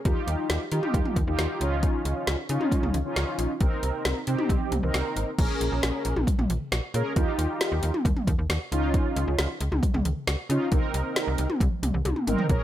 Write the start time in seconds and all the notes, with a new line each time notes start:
0.05 D#2 D#4 F4 G4, kick, closed hi-hat
0.27 D#2, closed hi-hat
0.50 D#2, snare, closed hi-hat
0.72 D#3 D#4 F4 G4, closed hi-hat
0.83 mid tom
0.94 D#2, kick, closed hi-hat
1.05 mid tom
1.16 D#2, kick, closed hi-hat
1.27 D#2 D#4 F4 G4
1.39 D#2, snare, closed hi-hat
1.61 C#2 C#4 D#4 F4, closed hi-hat
1.83 kick, closed hi-hat
2.05 C#2, closed hi-hat
2.27 C#2, snare, closed hi-hat
2.49 C#3 C#4 D#4 F4, closed hi-hat
2.61 mid tom
2.72 kick, closed hi-hat
2.83 C#2, mid tom
2.94 C#2, closed hi-hat
3.05 C#4 D#4 F4
3.16 C#2, snare, closed hi-hat
3.38 A#1, closed hi-hat
3.61 C2 C4 D#4 A#4, kick, closed hi-hat
3.83 C2, closed hi-hat
4.05 C2, snare, closed hi-hat
4.27 C3 C4 D#4 G4, closed hi-hat
4.39 mid tom
4.49 C2, kick, closed hi-hat
4.72 C2, closed hi-hat, mid tom
4.83 C2 C4 D#4 A#4
4.94 C2, snare, closed hi-hat
5.16 G#1, closed hi-hat
5.38 A#1 C#4 G#4 A#4, kick, closed hi-hat, crash
5.61 A#1, closed hi-hat
5.72 A#1
5.83 A#1, snare, closed hi-hat
6.05 A#1, closed hi-hat
6.16 A#1, mid tom
6.27 kick, closed hi-hat
6.39 A#1, mid tom
6.50 A#1, closed hi-hat
6.72 A#1, snare, closed hi-hat
6.94 A#2 C#4 G#4 A#4, closed hi-hat
7.16 D#2 D#4 F4 G4, kick, closed hi-hat
7.39 D#2, closed hi-hat
7.61 snare, closed hi-hat
7.72 D#2
7.83 D#2, closed hi-hat
7.94 mid tom
8.05 D#2, kick, closed hi-hat
8.16 mid tom
8.27 D#2, kick, closed hi-hat
8.39 D#2
8.50 D#2, snare, closed hi-hat
8.72 C#2 C#4 D#4 F4, closed hi-hat
8.94 kick, closed hi-hat
9.16 C#2, closed hi-hat
9.27 C#2
9.38 C#2, snare, closed hi-hat
9.61 C#2, closed hi-hat
9.72 C#2, mid tom
9.83 kick, closed hi-hat
9.94 C#2, mid tom
10.05 C#2, closed hi-hat
10.27 C#2, snare, closed hi-hat
10.50 C#3 C#4 D#4 F4, closed hi-hat
10.72 C2 C4 D#4 A#4, kick, closed hi-hat
10.94 C2, closed hi-hat
11.16 snare, closed hi-hat
11.27 C2
11.38 C2, closed hi-hat
11.50 mid tom
11.61 C2, kick, closed hi-hat
11.83 C2, closed hi-hat, mid tom
11.94 C2
12.05 C2, closed hi-hat, high tom
12.16 mid tom
12.27 G#1 C4 D#4 A#4, closed hi-hat, mid tom
12.38 floor tom
12.49 A#1 C#4 G#4 A#4, kick, closed hi-hat